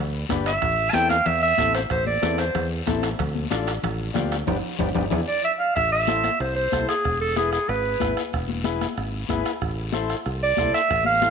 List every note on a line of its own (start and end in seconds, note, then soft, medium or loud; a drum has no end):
0.00 0.23 D2 medium
0.29 0.56 G1 medium
0.29 0.53 D4 medium
0.29 0.53 G4 medium
0.29 0.53 B4 medium
0.29 bombo low medium
0.29 bombo rim medium
0.29 high conga medium
0.29 high timbale medium
0.29 low timbale medium
0.29 short guiro medium
0.46 0.92 E5 medium
0.46 bombo rim medium
0.46 high timbale medium
0.46 short guiro medium
0.62 0.88 A1 medium
0.62 bombo low medium
0.62 bombo rim medium
0.62 high conga soft
0.62 low conga medium
0.62 high timbale medium
0.62 long guiro medium
0.90 1.17 E4 medium
0.90 1.09 G5 loud
0.90 0.96 A5 medium
0.90 bombo rim medium
0.90 high conga medium
0.90 high timbale medium
0.94 1.20 E2 medium
0.94 1.17 C4 medium
0.94 1.17 A4 medium
0.94 short guiro medium
1.09 1.27 F5 medium
1.09 bombo rim medium
1.09 high conga medium
1.09 high timbale medium
1.09 short guiro medium
1.26 1.52 E2 loud
1.26 1.42 E5 medium
1.26 bombo rim medium
1.26 high conga soft
1.26 low conga medium
1.26 high timbale medium
1.26 long guiro medium
1.42 1.72 E5 loud
1.58 1.84 A1 medium
1.58 1.81 C4 medium
1.58 1.81 E4 medium
1.58 1.81 A4 medium
1.58 bombo low medium
1.58 bombo rim medium
1.58 high conga medium
1.58 high timbale medium
1.58 short guiro medium
1.75 1.82 C5 medium
1.75 bombo rim medium
1.75 high timbale medium
1.75 short guiro medium
1.90 2.16 A1 medium
1.90 2.06 C5 medium
1.90 bombo low medium
1.90 bombo rim medium
1.90 high conga soft
1.90 high timbale medium
1.90 long guiro medium
2.06 2.37 D5 medium
2.06 high conga medium
2.22 2.48 E2 medium
2.22 2.45 C4 medium
2.22 2.45 E4 medium
2.22 2.45 A4 medium
2.22 bombo rim medium
2.22 high conga medium
2.22 high timbale medium
2.22 short guiro medium
2.38 2.69 C5 medium
2.38 bombo rim medium
2.38 high timbale medium
2.38 short guiro medium
2.55 2.80 E2 loud
2.55 bombo rim medium
2.55 high conga soft
2.55 low conga medium
2.55 high timbale medium
2.55 long guiro medium
2.86 3.13 A1 medium
2.86 3.09 C4 medium
2.86 3.09 E4 medium
2.86 3.10 A4 medium
2.86 bombo low medium
2.86 bombo rim medium
2.86 high conga medium
2.86 high timbale medium
2.86 low timbale medium
2.86 short guiro medium
3.03 bombo rim medium
3.03 high timbale medium
3.03 short guiro medium
3.19 3.45 D2 medium
3.19 bombo low medium
3.19 bombo rim medium
3.19 high conga soft
3.19 low conga medium
3.19 high timbale medium
3.19 long guiro medium
3.35 high conga medium
3.50 3.77 A1 medium
3.50 3.73 D4 medium
3.50 3.73 F4 medium
3.50 3.74 A4 medium
3.50 bombo rim medium
3.50 high conga medium
3.50 high timbale medium
3.50 short guiro medium
3.67 bombo rim medium
3.67 high timbale medium
3.67 short guiro medium
3.83 4.09 A1 medium
3.83 bombo rim medium
3.83 high conga soft
3.83 low conga medium
3.83 high timbale medium
3.83 long guiro medium
4.14 4.41 D2 medium
4.14 4.37 D4 medium
4.14 4.37 F4 medium
4.14 4.37 G4 medium
4.14 bombo low medium
4.14 bombo rim medium
4.14 high conga medium
4.14 low conga medium
4.14 high timbale medium
4.14 low timbale medium
4.14 short guiro medium
4.32 bombo rim medium
4.32 high timbale medium
4.32 short guiro medium
4.47 4.60 G1 medium
4.47 4.58 B3 medium
4.47 4.58 D4 medium
4.47 4.58 G4 medium
4.47 bombo low loud
4.47 low conga loud
4.47 high timbale loud
4.47 long guiro medium
4.79 4.92 G1 loud
4.79 4.89 B3 medium
4.79 4.90 D4 medium
4.79 4.90 G4 medium
4.79 bombo low medium
4.79 low conga loud
4.79 high timbale loud
4.79 long guiro loud
4.95 5.08 G1 medium
4.95 5.05 B3 medium
4.95 5.05 D4 medium
4.95 5.05 G4 medium
4.95 bombo low medium
4.95 low conga medium
4.95 high timbale medium
4.95 long guiro loud
5.10 5.24 E2 loud
5.10 5.21 D4 medium
5.10 5.21 E4 medium
5.10 5.21 G#4 medium
5.10 bombo low medium
5.10 low conga medium
5.10 high timbale loud
5.10 long guiro medium
5.28 5.43 D5 medium
5.45 5.52 E5 medium
5.59 5.74 F5 medium
5.76 6.28 A1 medium
5.76 5.91 E5 medium
5.76 bombo low medium
5.76 bombo rim medium
5.76 high conga soft
5.76 long guiro medium
5.92 6.37 E5 medium
6.07 6.30 E4 medium
6.07 6.30 A4 medium
6.07 6.31 C5 medium
6.07 bombo rim medium
6.07 high conga medium
6.07 short guiro medium
6.24 bombo rim medium
6.24 high conga medium
6.24 short guiro medium
6.40 6.66 C2 medium
6.40 6.55 C5 medium
6.40 bombo rim medium
6.40 high conga soft
6.40 long guiro medium
6.56 6.86 C5 medium
6.72 6.85 C2 medium
6.72 6.95 E4 medium
6.72 6.95 A4 medium
6.72 6.95 C5 medium
6.72 bombo low medium
6.72 bombo rim medium
6.72 high conga medium
6.72 short guiro medium
6.89 7.18 G#4 medium
6.89 bombo rim medium
6.89 short guiro medium
7.05 7.56 E1 medium
7.05 bombo low medium
7.05 bombo rim medium
7.05 high conga soft
7.05 long guiro medium
7.21 7.36 A4 medium
7.36 7.59 E4 medium
7.36 7.59 G#4 medium
7.36 7.52 G#4 medium
7.36 7.59 B4 medium
7.36 bombo rim medium
7.36 high conga medium
7.36 short guiro medium
7.52 7.71 G#4 medium
7.52 bombo rim medium
7.52 short guiro medium
7.68 7.94 G#1 medium
7.68 8.17 B4 medium
7.68 bombo rim medium
7.68 high conga soft
7.68 long guiro medium
8.00 8.14 G#1 medium
8.00 8.23 E4 medium
8.00 8.23 G#4 medium
8.00 8.23 B4 medium
8.00 bombo low medium
8.00 bombo rim medium
8.00 high conga medium
8.00 short guiro medium
8.17 bombo rim medium
8.17 short guiro medium
8.32 8.85 E1 medium
8.32 bombo low medium
8.32 bombo rim medium
8.32 high conga soft
8.32 long guiro medium
8.49 high conga medium
8.64 8.87 E4 medium
8.64 8.87 G#4 medium
8.64 8.87 B4 medium
8.64 bombo rim medium
8.64 high conga medium
8.64 short guiro medium
8.81 bombo rim medium
8.81 high conga medium
8.81 short guiro medium
8.97 9.23 G#1 medium
8.97 bombo rim medium
8.97 high conga soft
8.97 long guiro medium
9.29 9.42 G#1 medium
9.29 9.52 E4 medium
9.29 9.52 G#4 medium
9.29 9.52 B4 medium
9.29 bombo low medium
9.29 bombo rim medium
9.29 high conga medium
9.29 short guiro medium
9.45 bombo rim medium
9.45 short guiro medium
9.61 10.13 A1 medium
9.61 bombo low medium
9.61 bombo rim medium
9.61 high conga soft
9.61 long guiro medium
9.92 10.16 E4 medium
9.92 10.16 A4 medium
9.92 10.17 C5 medium
9.92 bombo rim medium
9.92 high conga medium
9.92 short guiro medium
10.09 bombo rim medium
10.09 short guiro medium
10.25 10.52 C2 medium
10.25 bombo rim medium
10.25 high conga soft
10.25 long guiro medium
10.43 10.72 D5 medium
10.57 10.71 C2 medium
10.57 10.81 E4 medium
10.57 10.81 A4 medium
10.57 10.81 C5 medium
10.57 bombo low medium
10.57 bombo rim medium
10.57 high conga medium
10.57 short guiro medium
10.74 11.04 E5 loud
10.74 bombo rim medium
10.74 short guiro medium
10.89 11.30 A1 medium
10.89 bombo low medium
10.89 bombo rim medium
10.89 high conga soft
10.89 long guiro medium
11.04 11.30 F5 loud
11.04 high conga medium
11.22 11.30 E4 medium
11.22 11.30 A4 medium
11.22 11.30 C5 medium
11.22 bombo rim medium
11.22 high conga medium
11.22 short guiro medium